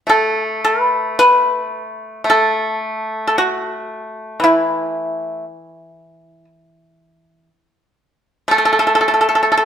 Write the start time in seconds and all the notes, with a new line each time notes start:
0.07 A3 A4
0.65 B4
1.19 B4
2.24 A3
2.30 A4
3.27 A4
3.38 F#4
4.40 E3 E4
8.48 A3 A4
8.58 A4
8.65 A4
8.73 A4
8.79 A4
8.87 A4
8.95 A4
9.01 A4
9.08 A4
9.14 A4
9.21 A4
9.29 A4
9.35 A4
9.43 A4
9.52 A4
9.57 A4